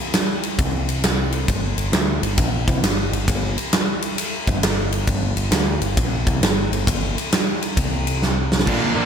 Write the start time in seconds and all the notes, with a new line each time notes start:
0.14 snare, ride
0.43 ride
0.58 C2, kick, ride
0.89 ride
1.04 snare, ride
1.32 ride
1.48 G1, kick, ride
1.77 G1, ride
1.92 D2, snare, ride
2.21 G1, ride
2.37 A#1, kick, ride
2.67 C2, kick, ride
2.82 G1, snare, ride
3.12 G1, ride
3.28 G1, kick, ride
3.58 ride
3.73 snare, ride
4.02 ride
4.18 ride
4.47 G1, kick, ride
4.63 snare, ride
4.92 ride
5.07 G1, kick, ride
5.36 G1, ride
5.51 D2, snare, ride
5.80 G1, ride
5.97 A#1, kick, ride
6.26 C2, kick, ride
6.41 G1, snare, ride
6.71 G1, ride
6.87 G1, kick, ride
7.18 ride
7.32 snare, ride
7.62 ride
7.77 C2, kick, ride
8.07 ride
8.22 snare
8.52 snare
8.59 snare
8.67 A#1 A#2 D3 F3 A#3 D4, kick, crash
8.96 A#2 D3 F3 A#3 D4